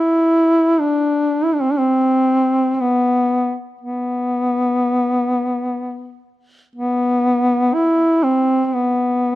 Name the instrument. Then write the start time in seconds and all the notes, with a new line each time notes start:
duduk
Already playing: E4
0.80 D4
1.44 E4
1.53 D4
1.61 C4
1.71 D4
1.78 C4
2.75 C4
2.80 B3
3.81 B3
6.75 B3
7.74 E4
8.23 C4
8.65 C4
8.74 B3